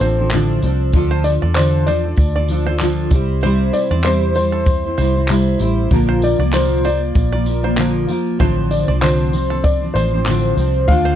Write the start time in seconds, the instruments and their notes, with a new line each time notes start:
Already playing: upright piano C5
0.00 fingered electric bass A1, steel-string acoustic guitar F3 C4 D4 A4, five-string banjo C5, tambourine
0.18 steel-string acoustic guitar F3 C4 D4 A4
0.31 steel-string acoustic guitar A2 D3 F3 C4 D4 A4, clap, tambourine
0.62 fingered electric bass C2, steel-string acoustic guitar F3 C4 D4 A4, tambourine
0.92 fingered electric bass D2, steel-string acoustic guitar D3 F3 D4 F4 A4, kick, tambourine
1.11 five-string banjo C5
1.24 upright piano D5, tambourine
1.26 tambourine
1.41 fingered electric bass E2, steel-string acoustic guitar D4 F4 A4, five-string banjo D5
1.55 steel-string acoustic guitar D3 D4 F4 A4, upright piano C5, five-string banjo D5, clap, tambourine
1.86 steel-string acoustic guitar F3 D4 F4 A4, five-string banjo C5, upright piano D5, tambourine
2.04 steel-string acoustic guitar D4 F4 A4
2.16 fingered electric bass D2, kick, tambourine
2.36 steel-string acoustic guitar D4 F4 A4, five-string banjo D5
2.48 steel-string acoustic guitar F3 D4 F4, tambourine
2.52 steel-string acoustic guitar A4
2.65 steel-string acoustic guitar D4 F4 A4, five-string banjo C5
2.80 steel-string acoustic guitar D3 F3 D4 F4 A4, clap, tambourine
3.10 fingered electric bass C2, steel-string acoustic guitar G3 C4 E4, kick, tambourine
3.15 steel-string acoustic guitar C5
3.41 steel-string acoustic guitar C3 G3 C4 E4 C5, five-string banjo C5, tambourine
3.73 upright piano D5, tambourine
3.90 fingered electric bass E2, steel-string acoustic guitar C4 E4 C5, five-string banjo D5
4.04 steel-string acoustic guitar C3 G3 C4 E4 C5, upright piano C5, five-string banjo C5, clap, tambourine
4.35 steel-string acoustic guitar G3 C4 E4, upright piano C5, tambourine
4.39 steel-string acoustic guitar C5
4.52 five-string banjo A4
4.66 kick, tambourine
4.84 steel-string acoustic guitar C4 E4 C5
4.98 fingered electric bass C2, steel-string acoustic guitar G3 C4 E4 C5, five-string banjo C5, tambourine
5.15 steel-string acoustic guitar C4 E4 C5
5.28 steel-string acoustic guitar C3 G3 C4 E4 C5, clap, tambourine
5.59 fingered electric bass A1, steel-string acoustic guitar G3 C4 E4 C5, tambourine
5.90 fingered electric bass A#1, steel-string acoustic guitar A#2 D3 F3 A#3 F4 A#4, kick, tambourine
6.09 five-string banjo C5
6.22 upright piano D5, tambourine
6.24 tambourine
6.39 fingered electric bass C2, steel-string acoustic guitar F3 A#3 F4 A#4, five-string banjo D5
6.53 steel-string acoustic guitar A#2 D3 F3 A#3 F4 A#4, upright piano C5, five-string banjo D5, clap, tambourine
6.83 steel-string acoustic guitar F3 A#3 F4 A#4, five-string banjo C5, upright piano D5, tambourine
7.15 fingered electric bass A#1, kick, tambourine
7.32 steel-string acoustic guitar F3 A#3 F4 A#4, five-string banjo D5
7.45 steel-string acoustic guitar F3 A#3 F4 A#4, tambourine
7.63 steel-string acoustic guitar F3 A#3 F4 A#4, five-string banjo C5
7.77 steel-string acoustic guitar A#2 D3 F3 A#3 F4 A#4, clap, tambourine
8.07 steel-string acoustic guitar F3 A#3 F4 A#4, tambourine
8.39 fingered electric bass A1, steel-string acoustic guitar A2 D3 F3 C4 D4 C5, five-string banjo C5, kick, tambourine
8.71 upright piano D5, tambourine
8.73 tambourine
8.88 fingered electric bass C2, steel-string acoustic guitar F3 C4 D4 C5, five-string banjo D5
9.01 steel-string acoustic guitar A2 D3 F3 C4 D4 C5, five-string banjo C5, upright piano C5, clap, tambourine
9.33 steel-string acoustic guitar F3 C4 D4 C5, tambourine
9.50 steel-string acoustic guitar F3 C4 D4 C5, five-string banjo A4
9.64 upright piano D5, kick, tambourine
9.80 steel-string acoustic guitar F3 C4 D4 C5
9.94 fingered electric bass A1, steel-string acoustic guitar F3 C4 D4 C5, upright piano C5, five-string banjo C5, tambourine
10.12 steel-string acoustic guitar F3 C4 D4 C5
10.26 steel-string acoustic guitar A2 D3 F3 C4 D4 C5, clap, tambourine
10.57 fingered electric bass C2, steel-string acoustic guitar F3 C4 D4 C5, tambourine
10.88 fingered electric bass D2, steel-string acoustic guitar D3 A3 D4 F4 A4, upright piano F5, kick, tambourine
11.05 five-string banjo C5